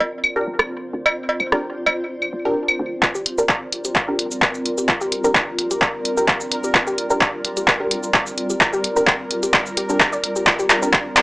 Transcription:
Already playing: C4 F4 C5 D5
0.00 G1, cowbell
0.24 claves
0.36 D4 G4 A#4
0.47 G1
0.59 cross-stick, claves
0.93 D2
1.06 cowbell, claves
1.29 cowbell
1.40 G1, claves
1.52 D4 G4 A#4, cross-stick
1.86 G1, cowbell, claves
2.22 claves
2.33 G1
2.45 D4 G4 A#4
2.68 claves
2.79 D2
3.03 G3 F4 A#4, kick, clap
3.15 G4, shaker
3.26 closed hi-hat
3.34 D4 G4 A#4, shaker
3.49 kick, clap
3.72 closed hi-hat
3.85 G4, closed hi-hat, shaker
3.96 kick, clap
4.08 D4 G4 A#4
4.19 closed hi-hat
4.31 shaker
4.42 kick, clap
4.54 shaker
4.66 closed hi-hat
4.78 G4, shaker
4.89 F4, kick, clap
5.01 G4, shaker
5.12 closed hi-hat
5.24 D4 G4 A#4, shaker
5.35 kick, clap
5.59 closed hi-hat
5.71 G4, closed hi-hat, shaker
5.82 kick, clap
6.05 closed hi-hat
6.17 D4 G4 A#4, shaker
6.28 kick, clap
6.41 shaker
6.52 closed hi-hat
6.64 G4, shaker
6.75 F4, kick, clap
6.87 G4, shaker
6.98 closed hi-hat
7.10 D4 G4 A#4, shaker
7.21 kick, clap
7.45 closed hi-hat
7.57 G4, closed hi-hat, shaker
7.68 kick, clap
7.80 D4 G4 A#4
7.91 closed hi-hat
8.03 shaker
8.14 kick, clap
8.27 shaker
8.38 closed hi-hat
8.50 G4, shaker
8.61 F4, kick, clap
8.73 G4, shaker
8.84 closed hi-hat
8.96 D4 G4 A#4, shaker
9.07 kick, clap
9.31 closed hi-hat
9.43 G4, closed hi-hat, shaker
9.54 kick, clap
9.66 shaker
9.77 G4, closed hi-hat
9.89 D4 G4 A#4, shaker
10.00 kick, clap
10.13 D5, shaker
10.24 closed hi-hat
10.36 G4, shaker
10.47 F4, kick, clap
10.59 G4, shaker
10.70 clap, closed hi-hat
10.82 D4 G4 A#4, shaker
10.93 kick, clap
11.17 clap, closed hi-hat

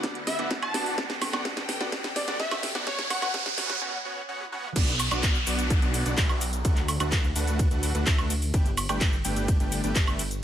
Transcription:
Already playing: D2 D3 E4 B4 F#5, riser
0.03 B3 D4 F#4 D5 F#5, kick, snare, closed hi-hat
0.15 closed hi-hat
0.27 E5, snare, open hi-hat
0.39 B3 D4 F#4 D5 F#5, closed hi-hat
0.51 kick, snare, closed hi-hat
0.62 A5, closed hi-hat, high woodblock
0.74 B3 D4 F#4 D5 F#5, snare, open hi-hat
0.86 open hi-hat
0.98 G2 B3 D4 F#4 A4 D5 F#5 G5, kick, snare, closed hi-hat
1.10 snare, closed hi-hat
1.22 snare, open hi-hat, high woodblock
1.33 B3 D4 F#4 D5 F#5, snare, closed hi-hat, high woodblock
1.45 B3 D4 F#4 D5 F#5, kick, snare, closed hi-hat
1.57 snare, closed hi-hat
1.69 snare, open hi-hat
1.81 B3 D4 F#4 D5 F#5, snare, closed hi-hat
1.92 B3 D4 F#4 D5 F#5, kick, snare, closed hi-hat
2.04 snare, closed hi-hat
2.16 D5, snare, open hi-hat
2.28 B3 D4 F#4 D5 F#5, snare, closed hi-hat
2.40 B3 D4 F#4 D5 E5 F#5, kick, snare, closed hi-hat
2.51 snare, closed hi-hat, high woodblock
2.63 snare, open hi-hat
2.75 B3 D4 F#4 D5 F#5, snare, closed hi-hat
2.87 F#2 E3 B3 C#4 F#4 C#5 F#5, kick, snare, closed hi-hat
2.99 snare, closed hi-hat
3.10 B3 C#4 F#4 C#5 F#5, snare, open hi-hat, high woodblock
3.22 F#5, snare, closed hi-hat, high woodblock
3.34 B3 C#4 F#4 C#5 F#5, kick, snare, closed hi-hat
3.46 snare, closed hi-hat
3.58 B3 C#4 F#4 C#5 F#5, snare, open hi-hat
3.70 snare, closed hi-hat
3.81 B3 C#4 F#4 C#5 F#5
4.05 B3 C#4 F#4 C#5 F#5
4.29 B3 C#4 F#4 C#5 F#5
4.40 high tom
4.52 B3 C#4 F#4 C#5 F#5, mid tom
4.64 mid tom
4.76 B1 B3 D4 F#4 D5 F#5, kick, closed hi-hat, ride, crash, downlifter, shaker
4.88 closed hi-hat, shaker
4.99 open hi-hat, high woodblock, shaker
5.11 B1 B3 D4 F#4 D5 F#5, closed hi-hat, high woodblock, shaker
5.23 kick, clap, closed hi-hat, ride, shaker
5.35 shaker
5.47 B1 B3 D4 F#4 D5 F#5, open hi-hat, shaker
5.59 closed hi-hat, shaker
5.70 kick, closed hi-hat, ride, shaker
5.82 B1 B3 D4 F#4 D5 F#5, closed hi-hat, shaker
5.94 open hi-hat, shaker
6.06 B1 B3 D4 F#4 D5 F#5, closed hi-hat, shaker
6.18 B1 B3 D4 F#4 D5 E5, kick, clap, closed hi-hat, ride, shaker
6.29 high woodblock, shaker
6.41 open hi-hat, shaker
6.53 closed hi-hat, shaker
6.65 D2 A3 D4 F#4 B4 F#5, kick, closed hi-hat, ride, shaker
6.77 clap, closed hi-hat, shaker
6.88 open hi-hat, high woodblock, shaker
7.00 D2 A3 D4 F#4 B4 F#5, closed hi-hat, high woodblock, shaker
7.12 kick, clap, closed hi-hat, ride, shaker
7.24 shaker
7.36 D2 A3 D4 F#4 B4 F#5, open hi-hat, shaker
7.47 closed hi-hat, shaker
7.59 kick, closed hi-hat, ride, shaker
7.71 D2 A3 D4 F#4 B4 F#5, closed hi-hat, shaker
7.83 open hi-hat, shaker
7.95 D2 A3 D4 F#4 B4 F#5, closed hi-hat, shaker
8.07 D2 A3 D4 F#4 B4 E5, kick, clap, closed hi-hat, ride, shaker
8.18 high woodblock, shaker
8.30 open hi-hat, shaker
8.42 open hi-hat, shaker
8.54 G1 A3 D4 G4 B4 G5, kick, closed hi-hat, ride, shaker
8.66 closed hi-hat, shaker
8.77 open hi-hat, high woodblock, shaker
8.89 G1 A3 D4 G4 B4 G5, closed hi-hat, high woodblock, shaker
9.01 kick, clap, closed hi-hat, ride, shaker
9.13 shaker
9.25 G1 A3 D4 G4 B4 G5, open hi-hat, shaker
9.36 closed hi-hat, shaker
9.48 kick, closed hi-hat, ride, shaker
9.60 G1 A3 D4 G4 B4 G5, closed hi-hat, shaker
9.72 open hi-hat, shaker
9.84 G1 A3 D4 G4 B4 G5, closed hi-hat, shaker
9.96 G1 A3 D4 G4 B4 E5, kick, clap, closed hi-hat, ride, shaker
10.07 high woodblock, shaker
10.19 open hi-hat, shaker
10.31 closed hi-hat, shaker

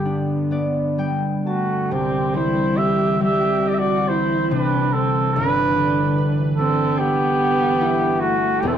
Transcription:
Already playing: G2 D3 G3 B3 G4
0.05 D4
0.51 B3 D5
0.98 G3 G5
1.47 A3 F#4 A5
1.91 C2 C3 D3 E3 C4 G4
2.34 G3 E4 C5
2.77 E4 G4 E5
3.21 G3 G4 E5
3.65 G4 D5
3.74 G4 E5
3.79 F#4 D5
4.08 E4 C5
4.49 C3 D4 B4
4.93 C4 A4
5.33 G1 G2 D4 B4
5.76 D3
6.18 B4
6.56 C4 D4 A4
6.98 B3 G4
7.81 E4
8.20 A3 F#4
8.60 E1 E2 E3 G3 G4
8.65 B3 A4
8.72 C4

